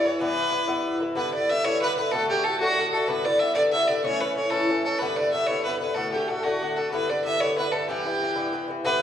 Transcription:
0.05 E3 B3 E4 C#5
0.20 G2 E3 B3 E4 B4
0.51 G2 E3 B3 E4
0.68 G2 E3 B3 E4
1.00 E3 B3 E4
1.15 G2 D3 B3 E4 B4
1.34 D3 B3 E4 D5
1.49 G2 D3 B3 E4 E5
1.64 G2 D3 B3 E4 C#5
1.81 G2 D3 B3 E4 B4
1.96 D3 B3 E4 B4
2.12 A2 D3 A3 F#4 A4
2.29 D3 A3 F#4 G4
2.44 A2 D3 A3 F#4 A4
2.60 A2 D3 A3 F#4
2.78 A2 D3 A3 F#4
2.92 D3 A3 F#4 A4
3.08 G2 D3 B3 E4 B4
3.25 D3 B3 E4 D5
3.39 G2 D3 B3 E4 E5
3.55 G2 D3 B3 E4 D5
3.72 G2 D3 B3 E4 E5
3.87 D3 B3 E4 D5
4.03 A2 E3 C#4 E4 C#5
4.21 E3 C#4 E4 B4
4.35 A2 E3 C#4 E4 C#5
4.51 A2 E3 C#4 E4 A4
4.70 A2 E3 C#4 E4
4.84 E3 C#4 E4 A4
4.99 G2 D3 B3 E4 B4
5.16 D3 B3 E4 D5
5.31 G2 D3 B3 E4 E5
5.47 G2 D3 B3 E4 C#5
5.64 G2 D3 B3 E4 B4
5.79 B3 E4 B4
5.83 D3
5.95 A2 D3 A3 F#4 A4
6.12 D3 A3 F#4 G4
6.28 A2 D3 A3 F#4 A4
6.44 A2 D3 A3 F#4
6.61 A2 D3 A3 F#4
6.76 D3 A3 F#4 A4
6.91 G2 D3 B3 E4 B4
7.09 D3 B3 E4 D5
7.24 G2 D3 B3 E4 E5
7.40 G2 D3 B3 E4 C#5
7.57 G2 D3 B3 E4 B4
7.72 D3 B3 E4 A4
7.88 G2 E3 B3 E4 G4
8.06 E3 B3 E4
8.20 G2 E3 B3 E4
8.36 G2 E3 B3 E4
8.53 G2 E3 B3 E4
8.68 E3 B3 E4
8.84 G2 D3 B3 E4 B4

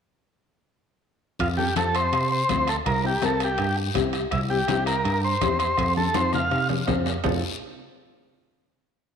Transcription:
1.39 F2 F4, bombo low, bombo rim, high conga, high timbale, long guiro
1.57 C4 F4 G4 A4, high conga
1.76 F2 C4 F4 A4, bombo rim, high conga, high timbale, short guiro
1.95 C5, bombo rim, high timbale, short guiro
2.13 C3, bombo rim, high conga, high timbale, long guiro
2.32 C5
2.49 D2 C4 F4 C5, bombo low, bombo rim, high conga, high timbale, short guiro
2.67 A4, bombo rim, high timbale, short guiro
2.86 C2 A#4, bombo low, bombo rim, high conga, high timbale, long guiro
3.04 C4 E4 G4
3.22 C2 C4 E4 A4 A#4, bombo rim, high conga, high timbale, short guiro
3.40 G4, bombo rim, high timbale, short guiro
3.58 G2, bombo rim, high conga, high timbale, long guiro
3.94 C2 C4 E4 G4, bombo low, bombo rim, high conga, low conga, high timbale, short guiro
4.13 bombo rim, high timbale, short guiro
4.31 C2 E4, bombo low, bombo rim, high conga, high timbale, long guiro
4.50 C4 E4 G4
4.68 C2 C4 E4 G4, bombo rim, high conga, high timbale, short guiro
4.86 A#4, bombo rim, high timbale, short guiro
5.04 G2, bombo rim, high conga, high timbale, long guiro
5.24 C5
5.41 E2 C4 E4 G4, bombo low, bombo rim, high conga, high timbale, low timbale, short guiro
5.59 C5, bombo rim, high timbale, short guiro
5.78 F2, bombo low, bombo rim, high conga, high timbale, long guiro
5.96 C4 F4 A4, high conga
6.14 F2 C4 F4 C5, bombo rim, high conga, high timbale, short guiro
6.33 F5, bombo rim, low conga, short guiro
6.51 C3, bombo rim, high conga, high timbale, long guiro
6.69 high conga, low timbale
6.87 F2 C4 F4 C5, bombo low, bombo rim, high conga, low conga, low timbale, short guiro
7.06 bombo rim, low timbale, short guiro
7.24 F2 C4 F4 A4, bombo low, low conga, low timbale, long guiro

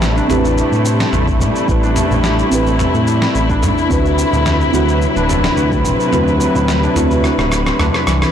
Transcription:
Already playing: A1 C3 G3 A3 C4 D4 E4 G4 B4
0.02 snare, shaker
0.16 D4, shaker
0.28 A1 A3 C4 E4 G4, mid tom, shaker
0.32 B4
0.45 shaker
0.58 G4, shaker
0.72 A2, shaker
0.85 C4, shaker
1.00 A3, snare, shaker
1.12 A1 A3, mid tom, shaker
1.27 kick, shaker
1.40 A2 G3, frame drum, shaker
1.56 shaker
1.67 A1 C4 E4 G4 B4, kick, shaker
1.83 D4, shaker
1.96 A3, mid tom, shaker
2.11 A1, frame drum, shaker
2.24 G4, snare, shaker
2.39 shaker
2.50 A1 C4 E4 G4, shaker
2.54 B4
2.66 A3, shaker
2.79 A3, mid tom, shaker
2.94 A2, shaker
3.07 G3, shaker
3.22 snare, shaker
3.35 A1, shaker
3.50 D4, kick, shaker
3.62 A2 A3, kick, mid tom, shaker
3.78 shaker
3.88 D2 C3 F#3 C4 E4 F#4 B4, kick, shaker
4.06 shaker
4.18 C4, shaker
4.33 D2 A3, frame drum, shaker
4.46 A3, snare, mid tom, shaker
4.61 shaker
4.72 D2 F#3 C4 E4 F#4 B4, shaker
4.89 shaker
5.02 shaker
5.16 D1 D4, shaker
5.29 A3, mid tom, shaker
5.44 snare, shaker
5.57 D2 F#4, shaker
5.72 kick, shaker
5.84 D1 C4, frame drum, shaker
6.00 A3, shaker
6.10 D2 A3 C4 E4 F#4, mid tom, shaker
6.15 B4
6.28 shaker
6.41 F#3, shaker
6.55 D2, frame drum, shaker
6.68 snare, shaker
6.83 D4, shaker
6.94 D2 A3 C4 E4 F#4, mid tom, shaker
6.98 B4
7.11 shaker
7.24 F#4, cross-stick, shaker
7.38 D1, cross-stick, frame drum, shaker
7.52 cross-stick, shaker
7.66 C4, cross-stick, shaker
7.79 D2 D4, cross-stick, mid tom, shaker
7.94 E4, cross-stick, shaker
8.07 C2 E3, cross-stick, shaker
8.22 E4, cross-stick, shaker

